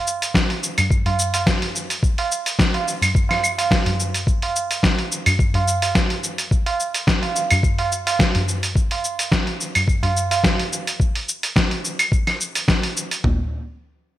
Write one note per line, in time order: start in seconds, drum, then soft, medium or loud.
0.07 shaker medium
0.22 open hi-hat medium
0.22 shaker soft
0.34 kick loud
0.34 snare loud
0.34 shaker soft
0.50 open hi-hat soft
0.63 shaker medium
0.78 open hi-hat medium
0.78 tabla ge loud
0.78 claves medium
0.78 shaker soft
0.90 kick loud
0.90 shaker soft
1.06 open hi-hat soft
1.06 tabla na medium
1.06 tabla ge medium
1.19 shaker medium
1.34 open hi-hat medium
1.34 tabla na medium
1.34 tabla tin soft
1.34 shaker medium
1.47 kick loud
1.47 snare loud
1.47 shaker soft
1.62 open hi-hat soft
1.75 tabla tin soft
1.75 shaker medium
1.90 open hi-hat medium
1.90 shaker soft
2.03 kick loud
2.03 shaker soft
2.18 open hi-hat soft
2.18 tabla na medium
2.32 shaker medium
2.46 open hi-hat medium
2.46 shaker soft
2.59 kick loud
2.59 snare loud
2.59 shaker soft
2.74 open hi-hat soft
2.74 tabla na medium
2.87 tabla tin medium
2.87 shaker medium
3.02 open hi-hat medium
3.02 tabla ge medium
3.02 claves medium
3.02 shaker soft
3.15 kick loud
3.15 shaker soft
3.29 snare soft
3.29 open hi-hat soft
3.29 tabla na medium
3.29 claves medium
3.43 tabla tin soft
3.43 claves medium
3.43 shaker medium
3.58 open hi-hat medium
3.58 tabla na medium
3.58 shaker soft
3.71 kick loud
3.71 snare loud
3.71 shaker soft
3.86 open hi-hat soft
3.86 tabla ge medium
4.00 shaker medium
4.14 open hi-hat soft
4.14 shaker soft
4.27 kick loud
4.27 shaker soft
4.42 open hi-hat soft
4.42 tabla na medium
4.56 shaker medium
4.71 open hi-hat medium
4.71 shaker soft
4.83 kick loud
4.83 snare loud
4.83 shaker soft
4.99 open hi-hat soft
5.12 shaker medium
5.26 open hi-hat medium
5.26 tabla ge medium
5.26 claves medium
5.26 shaker soft
5.39 kick loud
5.39 shaker soft
5.54 open hi-hat soft
5.54 tabla na medium
5.54 tabla ge medium
5.68 shaker medium
5.82 open hi-hat medium
5.82 tabla na medium
5.82 tabla tin medium
5.82 shaker soft
5.95 kick loud
5.95 snare medium
5.95 shaker soft
6.10 open hi-hat soft
6.24 tabla tin soft
6.24 shaker medium
6.38 open hi-hat medium
6.38 shaker soft
6.51 kick loud
6.51 shaker soft
6.66 open hi-hat soft
6.66 tabla na medium
6.80 shaker medium
6.94 open hi-hat medium
6.94 shaker soft
7.07 kick loud
7.07 snare loud
7.07 shaker soft
7.22 open hi-hat soft
7.22 tabla na medium
7.35 tabla tin medium
7.35 shaker medium
7.50 open hi-hat medium
7.50 tabla ge medium
7.50 claves medium
7.50 shaker soft
7.63 kick loud
7.63 shaker soft
7.79 open hi-hat soft
7.79 tabla na medium
7.92 tabla tin soft
7.92 shaker medium
8.07 open hi-hat medium
8.07 tabla na medium
8.07 shaker soft
8.19 kick loud
8.19 snare loud
8.19 shaker soft
8.35 open hi-hat soft
8.35 tabla ge medium
8.48 shaker medium
8.63 open hi-hat medium
8.63 shaker soft
8.76 kick loud
8.76 shaker soft
8.91 open hi-hat soft
8.91 tabla na medium
9.04 shaker medium
9.19 open hi-hat medium
9.19 shaker soft
9.32 kick loud
9.32 snare loud
9.32 shaker soft
9.47 open hi-hat soft
9.61 shaker medium
9.75 open hi-hat medium
9.75 tabla ge medium
9.75 claves medium
9.75 shaker soft
9.88 kick loud
9.88 shaker soft
10.03 open hi-hat soft
10.03 tabla na medium
10.03 tabla ge medium
10.17 shaker medium
10.31 open hi-hat medium
10.31 tabla na medium
10.31 tabla tin medium
10.31 shaker soft
10.44 kick loud
10.44 snare loud
10.44 shaker soft
10.59 open hi-hat soft
10.72 tabla tin soft
10.72 shaker medium
10.87 open hi-hat medium
10.87 shaker soft
11.00 kick loud
11.00 shaker soft
11.15 open hi-hat soft
11.29 shaker medium
11.43 open hi-hat medium
11.43 shaker soft
11.56 kick loud
11.56 snare loud
11.56 shaker soft
11.71 open hi-hat soft
11.85 shaker medium
11.99 open hi-hat medium
11.99 claves medium
11.99 shaker soft
12.12 kick loud
12.12 shaker soft
12.27 snare soft
12.27 open hi-hat soft
12.27 claves medium
12.41 shaker medium
12.55 open hi-hat medium
12.55 shaker soft
12.68 kick loud
12.68 snare loud
12.68 shaker soft
12.83 open hi-hat soft
12.97 shaker medium
13.11 open hi-hat medium
13.11 shaker soft
13.24 kick loud
13.24 floor tom loud